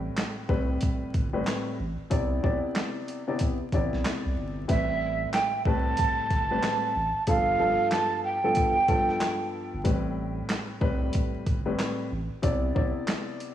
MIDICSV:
0, 0, Header, 1, 5, 480
1, 0, Start_track
1, 0, Key_signature, 0, "minor"
1, 0, Tempo, 645161
1, 1571, Time_signature, 4, 2, 24, 8
1, 10077, End_track
2, 0, Start_track
2, 0, Title_t, "Flute"
2, 0, Program_c, 0, 73
2, 3492, Note_on_c, 0, 76, 118
2, 3943, Note_off_c, 0, 76, 0
2, 3964, Note_on_c, 0, 79, 84
2, 4183, Note_off_c, 0, 79, 0
2, 4214, Note_on_c, 0, 81, 100
2, 5383, Note_off_c, 0, 81, 0
2, 5416, Note_on_c, 0, 77, 101
2, 5865, Note_off_c, 0, 77, 0
2, 5890, Note_on_c, 0, 81, 100
2, 6107, Note_off_c, 0, 81, 0
2, 6130, Note_on_c, 0, 79, 91
2, 7301, Note_off_c, 0, 79, 0
2, 10077, End_track
3, 0, Start_track
3, 0, Title_t, "Grand piano"
3, 0, Program_c, 1, 0
3, 0, Note_on_c, 1, 45, 90
3, 0, Note_on_c, 1, 55, 86
3, 0, Note_on_c, 1, 60, 79
3, 0, Note_on_c, 1, 71, 95
3, 322, Note_off_c, 1, 45, 0
3, 323, Note_off_c, 1, 55, 0
3, 324, Note_off_c, 1, 60, 0
3, 325, Note_off_c, 1, 71, 0
3, 361, Note_on_c, 1, 45, 89
3, 363, Note_on_c, 1, 55, 89
3, 365, Note_on_c, 1, 60, 87
3, 367, Note_on_c, 1, 71, 113
3, 935, Note_off_c, 1, 45, 0
3, 936, Note_off_c, 1, 55, 0
3, 937, Note_off_c, 1, 60, 0
3, 938, Note_off_c, 1, 71, 0
3, 990, Note_on_c, 1, 45, 97
3, 993, Note_on_c, 1, 55, 92
3, 995, Note_on_c, 1, 60, 83
3, 996, Note_on_c, 1, 71, 98
3, 1305, Note_off_c, 1, 45, 0
3, 1306, Note_off_c, 1, 55, 0
3, 1307, Note_off_c, 1, 60, 0
3, 1308, Note_off_c, 1, 71, 0
3, 1565, Note_on_c, 1, 48, 100
3, 1566, Note_on_c, 1, 59, 83
3, 1568, Note_on_c, 1, 64, 84
3, 1571, Note_on_c, 1, 74, 101
3, 1793, Note_off_c, 1, 48, 0
3, 1794, Note_off_c, 1, 59, 0
3, 1795, Note_off_c, 1, 64, 0
3, 1796, Note_off_c, 1, 74, 0
3, 1807, Note_on_c, 1, 48, 85
3, 1809, Note_on_c, 1, 59, 82
3, 1811, Note_on_c, 1, 64, 83
3, 1813, Note_on_c, 1, 74, 104
3, 2378, Note_off_c, 1, 48, 0
3, 2379, Note_off_c, 1, 59, 0
3, 2380, Note_off_c, 1, 64, 0
3, 2381, Note_off_c, 1, 74, 0
3, 2436, Note_on_c, 1, 48, 92
3, 2437, Note_on_c, 1, 59, 88
3, 2439, Note_on_c, 1, 64, 85
3, 2442, Note_on_c, 1, 74, 99
3, 2654, Note_off_c, 1, 48, 0
3, 2655, Note_off_c, 1, 59, 0
3, 2656, Note_off_c, 1, 64, 0
3, 2657, Note_off_c, 1, 74, 0
3, 2777, Note_on_c, 1, 48, 91
3, 2778, Note_on_c, 1, 59, 84
3, 2780, Note_on_c, 1, 64, 83
3, 2782, Note_on_c, 1, 74, 105
3, 3450, Note_off_c, 1, 48, 0
3, 3451, Note_off_c, 1, 59, 0
3, 3452, Note_off_c, 1, 64, 0
3, 3453, Note_off_c, 1, 74, 0
3, 3482, Note_on_c, 1, 45, 88
3, 3484, Note_on_c, 1, 55, 77
3, 3485, Note_on_c, 1, 60, 85
3, 3487, Note_on_c, 1, 71, 99
3, 4163, Note_off_c, 1, 45, 0
3, 4164, Note_off_c, 1, 55, 0
3, 4164, Note_off_c, 1, 60, 0
3, 4165, Note_off_c, 1, 71, 0
3, 4213, Note_on_c, 1, 45, 98
3, 4214, Note_on_c, 1, 55, 85
3, 4217, Note_on_c, 1, 60, 83
3, 4218, Note_on_c, 1, 71, 107
3, 4781, Note_off_c, 1, 45, 0
3, 4782, Note_off_c, 1, 55, 0
3, 4783, Note_off_c, 1, 60, 0
3, 4784, Note_off_c, 1, 71, 0
3, 4842, Note_on_c, 1, 45, 96
3, 4844, Note_on_c, 1, 55, 86
3, 4846, Note_on_c, 1, 60, 90
3, 4848, Note_on_c, 1, 71, 108
3, 5150, Note_off_c, 1, 45, 0
3, 5152, Note_off_c, 1, 55, 0
3, 5152, Note_off_c, 1, 60, 0
3, 5154, Note_off_c, 1, 71, 0
3, 5411, Note_on_c, 1, 43, 92
3, 5412, Note_on_c, 1, 53, 76
3, 5415, Note_on_c, 1, 59, 85
3, 5416, Note_on_c, 1, 69, 103
3, 5636, Note_off_c, 1, 43, 0
3, 5637, Note_off_c, 1, 53, 0
3, 5639, Note_off_c, 1, 59, 0
3, 5639, Note_off_c, 1, 69, 0
3, 5647, Note_on_c, 1, 43, 86
3, 5649, Note_on_c, 1, 53, 85
3, 5651, Note_on_c, 1, 59, 79
3, 5653, Note_on_c, 1, 69, 98
3, 6218, Note_off_c, 1, 43, 0
3, 6219, Note_off_c, 1, 53, 0
3, 6220, Note_off_c, 1, 59, 0
3, 6221, Note_off_c, 1, 69, 0
3, 6277, Note_on_c, 1, 43, 87
3, 6279, Note_on_c, 1, 53, 86
3, 6280, Note_on_c, 1, 59, 87
3, 6283, Note_on_c, 1, 69, 100
3, 6495, Note_off_c, 1, 43, 0
3, 6495, Note_off_c, 1, 53, 0
3, 6496, Note_off_c, 1, 59, 0
3, 6498, Note_off_c, 1, 69, 0
3, 6608, Note_on_c, 1, 43, 88
3, 6610, Note_on_c, 1, 53, 78
3, 6611, Note_on_c, 1, 59, 83
3, 6613, Note_on_c, 1, 69, 102
3, 7286, Note_off_c, 1, 43, 0
3, 7287, Note_off_c, 1, 53, 0
3, 7287, Note_off_c, 1, 59, 0
3, 7288, Note_off_c, 1, 69, 0
3, 7321, Note_on_c, 1, 45, 92
3, 7323, Note_on_c, 1, 55, 91
3, 7324, Note_on_c, 1, 60, 77
3, 7327, Note_on_c, 1, 71, 97
3, 8002, Note_off_c, 1, 45, 0
3, 8003, Note_off_c, 1, 55, 0
3, 8004, Note_off_c, 1, 60, 0
3, 8005, Note_off_c, 1, 71, 0
3, 8041, Note_on_c, 1, 45, 86
3, 8042, Note_on_c, 1, 55, 89
3, 8045, Note_on_c, 1, 60, 81
3, 8046, Note_on_c, 1, 71, 117
3, 8615, Note_off_c, 1, 45, 0
3, 8616, Note_off_c, 1, 55, 0
3, 8617, Note_off_c, 1, 60, 0
3, 8618, Note_off_c, 1, 71, 0
3, 8671, Note_on_c, 1, 45, 94
3, 8673, Note_on_c, 1, 55, 87
3, 8674, Note_on_c, 1, 60, 81
3, 8676, Note_on_c, 1, 71, 99
3, 8985, Note_off_c, 1, 45, 0
3, 8986, Note_off_c, 1, 55, 0
3, 8987, Note_off_c, 1, 60, 0
3, 8987, Note_off_c, 1, 71, 0
3, 9244, Note_on_c, 1, 48, 102
3, 9246, Note_on_c, 1, 59, 84
3, 9248, Note_on_c, 1, 64, 84
3, 9250, Note_on_c, 1, 74, 106
3, 9473, Note_off_c, 1, 48, 0
3, 9474, Note_off_c, 1, 59, 0
3, 9475, Note_off_c, 1, 64, 0
3, 9476, Note_off_c, 1, 74, 0
3, 9486, Note_on_c, 1, 48, 86
3, 9488, Note_on_c, 1, 59, 81
3, 9490, Note_on_c, 1, 64, 83
3, 9491, Note_on_c, 1, 74, 102
3, 10058, Note_off_c, 1, 48, 0
3, 10059, Note_off_c, 1, 59, 0
3, 10060, Note_off_c, 1, 64, 0
3, 10060, Note_off_c, 1, 74, 0
3, 10077, End_track
4, 0, Start_track
4, 0, Title_t, "Sub bass"
4, 0, Program_c, 2, 38
4, 367, Note_on_c, 2, 36, 90
4, 576, Note_off_c, 2, 36, 0
4, 762, Note_on_c, 2, 31, 49
4, 798, Note_off_c, 2, 31, 0
4, 850, Note_on_c, 2, 31, 83
4, 1058, Note_off_c, 2, 31, 0
4, 1333, Note_on_c, 2, 33, 100
4, 1461, Note_off_c, 2, 33, 0
4, 1574, Note_on_c, 2, 36, 109
4, 1780, Note_off_c, 2, 36, 0
4, 1814, Note_on_c, 2, 35, 83
4, 1941, Note_off_c, 2, 35, 0
4, 2771, Note_on_c, 2, 33, 91
4, 2899, Note_off_c, 2, 33, 0
4, 2921, Note_on_c, 2, 35, 91
4, 3000, Note_off_c, 2, 35, 0
4, 3162, Note_on_c, 2, 36, 98
4, 3240, Note_off_c, 2, 36, 0
4, 3252, Note_on_c, 2, 31, 97
4, 3459, Note_off_c, 2, 31, 0
4, 3494, Note_on_c, 2, 33, 108
4, 3907, Note_off_c, 2, 33, 0
4, 4207, Note_on_c, 2, 36, 87
4, 4416, Note_off_c, 2, 36, 0
4, 4602, Note_on_c, 2, 31, 49
4, 4638, Note_off_c, 2, 31, 0
4, 4692, Note_on_c, 2, 31, 84
4, 4899, Note_off_c, 2, 31, 0
4, 5174, Note_on_c, 2, 33, 97
4, 5301, Note_off_c, 2, 33, 0
4, 5414, Note_on_c, 2, 31, 104
4, 5620, Note_off_c, 2, 31, 0
4, 5654, Note_on_c, 2, 29, 90
4, 5781, Note_off_c, 2, 29, 0
4, 7242, Note_on_c, 2, 31, 89
4, 7320, Note_off_c, 2, 31, 0
4, 7333, Note_on_c, 2, 33, 114
4, 7747, Note_off_c, 2, 33, 0
4, 8046, Note_on_c, 2, 36, 98
4, 8256, Note_off_c, 2, 36, 0
4, 8441, Note_on_c, 2, 31, 49
4, 8477, Note_off_c, 2, 31, 0
4, 8531, Note_on_c, 2, 31, 92
4, 8738, Note_off_c, 2, 31, 0
4, 9012, Note_on_c, 2, 33, 88
4, 9140, Note_off_c, 2, 33, 0
4, 9253, Note_on_c, 2, 36, 113
4, 9460, Note_off_c, 2, 36, 0
4, 9494, Note_on_c, 2, 35, 89
4, 9621, Note_off_c, 2, 35, 0
4, 10077, End_track
5, 0, Start_track
5, 0, Title_t, "Drums"
5, 126, Note_on_c, 9, 42, 77
5, 130, Note_on_c, 9, 39, 87
5, 132, Note_on_c, 9, 38, 113
5, 200, Note_off_c, 9, 42, 0
5, 205, Note_off_c, 9, 39, 0
5, 206, Note_off_c, 9, 38, 0
5, 365, Note_on_c, 9, 36, 98
5, 440, Note_off_c, 9, 36, 0
5, 600, Note_on_c, 9, 42, 87
5, 615, Note_on_c, 9, 36, 96
5, 674, Note_off_c, 9, 42, 0
5, 689, Note_off_c, 9, 36, 0
5, 848, Note_on_c, 9, 42, 50
5, 850, Note_on_c, 9, 36, 91
5, 923, Note_off_c, 9, 42, 0
5, 924, Note_off_c, 9, 36, 0
5, 1090, Note_on_c, 9, 42, 66
5, 1094, Note_on_c, 9, 39, 85
5, 1096, Note_on_c, 9, 38, 104
5, 1165, Note_off_c, 9, 42, 0
5, 1169, Note_off_c, 9, 39, 0
5, 1170, Note_off_c, 9, 38, 0
5, 1568, Note_on_c, 9, 42, 91
5, 1572, Note_on_c, 9, 36, 113
5, 1643, Note_off_c, 9, 42, 0
5, 1647, Note_off_c, 9, 36, 0
5, 1813, Note_on_c, 9, 36, 97
5, 1888, Note_off_c, 9, 36, 0
5, 2048, Note_on_c, 9, 42, 75
5, 2052, Note_on_c, 9, 39, 89
5, 2053, Note_on_c, 9, 38, 114
5, 2122, Note_off_c, 9, 42, 0
5, 2126, Note_off_c, 9, 39, 0
5, 2128, Note_off_c, 9, 38, 0
5, 2293, Note_on_c, 9, 42, 56
5, 2367, Note_off_c, 9, 42, 0
5, 2522, Note_on_c, 9, 42, 91
5, 2536, Note_on_c, 9, 36, 94
5, 2596, Note_off_c, 9, 42, 0
5, 2611, Note_off_c, 9, 36, 0
5, 2770, Note_on_c, 9, 42, 51
5, 2771, Note_on_c, 9, 36, 90
5, 2845, Note_off_c, 9, 36, 0
5, 2845, Note_off_c, 9, 42, 0
5, 2924, Note_on_c, 9, 38, 34
5, 2999, Note_off_c, 9, 38, 0
5, 3011, Note_on_c, 9, 42, 66
5, 3015, Note_on_c, 9, 39, 81
5, 3016, Note_on_c, 9, 38, 103
5, 3085, Note_off_c, 9, 42, 0
5, 3089, Note_off_c, 9, 39, 0
5, 3091, Note_off_c, 9, 38, 0
5, 3488, Note_on_c, 9, 42, 88
5, 3492, Note_on_c, 9, 36, 109
5, 3563, Note_off_c, 9, 42, 0
5, 3567, Note_off_c, 9, 36, 0
5, 3967, Note_on_c, 9, 42, 74
5, 3971, Note_on_c, 9, 39, 88
5, 3972, Note_on_c, 9, 38, 112
5, 4041, Note_off_c, 9, 42, 0
5, 4045, Note_off_c, 9, 39, 0
5, 4047, Note_off_c, 9, 38, 0
5, 4206, Note_on_c, 9, 36, 100
5, 4281, Note_off_c, 9, 36, 0
5, 4441, Note_on_c, 9, 42, 88
5, 4456, Note_on_c, 9, 36, 96
5, 4516, Note_off_c, 9, 42, 0
5, 4531, Note_off_c, 9, 36, 0
5, 4690, Note_on_c, 9, 42, 52
5, 4691, Note_on_c, 9, 36, 89
5, 4765, Note_off_c, 9, 36, 0
5, 4765, Note_off_c, 9, 42, 0
5, 4932, Note_on_c, 9, 42, 65
5, 4936, Note_on_c, 9, 39, 83
5, 4937, Note_on_c, 9, 38, 105
5, 5006, Note_off_c, 9, 42, 0
5, 5010, Note_off_c, 9, 39, 0
5, 5012, Note_off_c, 9, 38, 0
5, 5409, Note_on_c, 9, 42, 91
5, 5413, Note_on_c, 9, 36, 111
5, 5483, Note_off_c, 9, 42, 0
5, 5487, Note_off_c, 9, 36, 0
5, 5887, Note_on_c, 9, 42, 74
5, 5892, Note_on_c, 9, 39, 87
5, 5893, Note_on_c, 9, 38, 112
5, 5962, Note_off_c, 9, 42, 0
5, 5966, Note_off_c, 9, 39, 0
5, 5967, Note_off_c, 9, 38, 0
5, 6361, Note_on_c, 9, 42, 87
5, 6376, Note_on_c, 9, 36, 94
5, 6435, Note_off_c, 9, 42, 0
5, 6450, Note_off_c, 9, 36, 0
5, 6610, Note_on_c, 9, 36, 90
5, 6610, Note_on_c, 9, 42, 51
5, 6684, Note_off_c, 9, 36, 0
5, 6684, Note_off_c, 9, 42, 0
5, 6763, Note_on_c, 9, 38, 33
5, 6837, Note_off_c, 9, 38, 0
5, 6850, Note_on_c, 9, 42, 64
5, 6854, Note_on_c, 9, 39, 83
5, 6855, Note_on_c, 9, 38, 103
5, 6924, Note_off_c, 9, 42, 0
5, 6928, Note_off_c, 9, 39, 0
5, 6929, Note_off_c, 9, 38, 0
5, 7327, Note_on_c, 9, 42, 88
5, 7331, Note_on_c, 9, 36, 108
5, 7401, Note_off_c, 9, 42, 0
5, 7406, Note_off_c, 9, 36, 0
5, 7806, Note_on_c, 9, 42, 73
5, 7810, Note_on_c, 9, 39, 88
5, 7812, Note_on_c, 9, 38, 111
5, 7880, Note_off_c, 9, 42, 0
5, 7885, Note_off_c, 9, 39, 0
5, 7886, Note_off_c, 9, 38, 0
5, 8045, Note_on_c, 9, 36, 97
5, 8119, Note_off_c, 9, 36, 0
5, 8280, Note_on_c, 9, 42, 88
5, 8295, Note_on_c, 9, 36, 97
5, 8354, Note_off_c, 9, 42, 0
5, 8369, Note_off_c, 9, 36, 0
5, 8529, Note_on_c, 9, 42, 50
5, 8530, Note_on_c, 9, 36, 91
5, 8603, Note_off_c, 9, 42, 0
5, 8604, Note_off_c, 9, 36, 0
5, 8771, Note_on_c, 9, 42, 65
5, 8775, Note_on_c, 9, 39, 80
5, 8776, Note_on_c, 9, 38, 102
5, 8845, Note_off_c, 9, 42, 0
5, 8849, Note_off_c, 9, 39, 0
5, 8850, Note_off_c, 9, 38, 0
5, 9248, Note_on_c, 9, 42, 93
5, 9252, Note_on_c, 9, 36, 111
5, 9322, Note_off_c, 9, 42, 0
5, 9326, Note_off_c, 9, 36, 0
5, 9493, Note_on_c, 9, 36, 97
5, 9568, Note_off_c, 9, 36, 0
5, 9727, Note_on_c, 9, 42, 72
5, 9731, Note_on_c, 9, 39, 89
5, 9733, Note_on_c, 9, 38, 111
5, 9801, Note_off_c, 9, 42, 0
5, 9806, Note_off_c, 9, 39, 0
5, 9807, Note_off_c, 9, 38, 0
5, 9972, Note_on_c, 9, 42, 54
5, 10046, Note_off_c, 9, 42, 0
5, 10077, End_track
0, 0, End_of_file